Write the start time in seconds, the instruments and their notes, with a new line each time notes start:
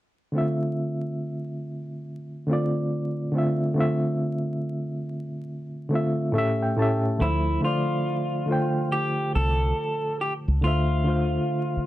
0.32 reed electric piano D3 A3 C4
0.37 reed electric piano F4 E5
2.47 reed electric piano D3 A3 C4
2.51 reed electric piano F4 D5
3.32 reed electric piano D3 A3 C4
3.37 reed electric piano F4 E5
3.74 reed electric piano D3 A3 C4
3.79 reed electric piano F4 E5
5.89 reed electric piano D3 A3 C4
5.94 reed electric piano F4 E5
6.32 reed electric piano A2 A3 C#4 E5
6.37 reed electric piano G4 E5
6.62 reed electric piano G5
6.76 reed electric piano A2 A3 C#4 A5
6.81 reed electric piano G4 E5
7.18 fingered electric bass D2, reed electric piano D3 F3 A3
7.22 clean electric guitar E4, reed electric piano C5 E5
7.61 reed electric piano D3 A3 F4, clean electric guitar F4
7.65 reed electric piano C5 D5
8.46 reed electric piano D3 A3 F4
8.51 reed electric piano C5 G5
8.92 clean electric guitar G4
9.35 fingered electric bass C2, clean electric guitar A4
10.21 clean electric guitar G4
10.48 fingered electric bass C#2
10.61 fingered electric bass D2, reed electric piano D3 A3 F4, clean electric guitar F4
10.66 reed electric piano C5 E5
11.04 reed electric piano D3 A3 F4
11.08 reed electric piano C5 F5
11.77 muted fingered electric bass stroke